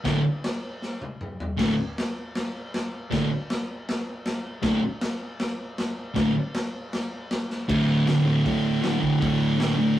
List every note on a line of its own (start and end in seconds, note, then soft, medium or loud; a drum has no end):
0.04 0.20 D2 medium
0.04 0.20 A2 loud
0.04 0.20 D3 loud
0.04 kick loud
0.04 snare loud
0.04 crash medium
0.44 snare loud
0.44 crash medium
0.82 snare medium
1.02 high tom medium
1.21 mid tom medium
1.40 floor tom medium
1.57 1.73 D2 medium
1.57 1.73 A2 medium
1.57 1.73 D3 loud
1.57 kick loud
1.57 snare loud
1.57 splash medium
1.57 crash medium
1.98 snare loud
1.98 crash medium
2.35 snare medium
2.35 crash medium
2.74 snare loud
2.74 crash soft
3.11 3.26 D2 medium
3.11 3.26 A2 loud
3.11 3.26 D3 loud
3.11 kick loud
3.11 snare loud
3.11 crash medium
3.50 snare loud
3.50 crash medium
3.89 snare loud
3.89 crash medium
4.25 snare loud
4.25 crash medium
4.62 4.78 D2 loud
4.62 4.78 A2 loud
4.62 4.79 D3 medium
4.62 kick loud
4.62 snare loud
4.62 crash medium
5.01 snare loud
5.01 crash medium
5.40 snare loud
5.40 crash medium
5.78 snare loud
5.78 crash medium
6.14 6.31 D2 loud
6.14 6.31 A2 loud
6.14 6.31 D3 loud
6.14 kick loud
6.14 snare loud
6.14 crash medium
6.54 snare loud
6.54 crash medium
6.93 snare medium
6.93 crash medium
7.31 snare loud
7.31 crash medium
7.50 snare medium
7.68 8.06 D2 medium
7.68 8.06 A2 loud
7.68 8.07 D3 loud
7.68 kick loud
7.68 crash loud
8.06 8.24 D2 medium
8.06 8.25 A2 medium
8.06 8.26 D3 medium
8.06 snare loud
8.06 open hi-hat medium
8.25 8.44 D2 medium
8.25 8.44 A2 loud
8.25 8.45 D3 loud
8.44 8.80 D2 loud
8.44 8.80 A2 loud
8.44 8.82 D3 loud
8.44 kick loud
8.44 open hi-hat medium
8.81 9.00 D2 medium
8.81 9.00 A2 loud
8.81 9.01 D3 loud
8.81 snare loud
8.81 open hi-hat medium
9.00 9.20 D2 medium
9.00 9.20 A2 medium
9.00 9.21 D3 medium
9.00 kick medium
9.20 9.57 D2 loud
9.20 9.57 A2 loud
9.20 9.58 D3 loud
9.20 kick loud
9.20 open hi-hat medium
9.57 9.77 D2 medium
9.57 9.77 A2 medium
9.57 9.77 D3 loud
9.57 snare loud
9.57 open hi-hat medium
9.77 9.97 D2 loud
9.77 9.97 A2 loud
9.77 9.98 D3 loud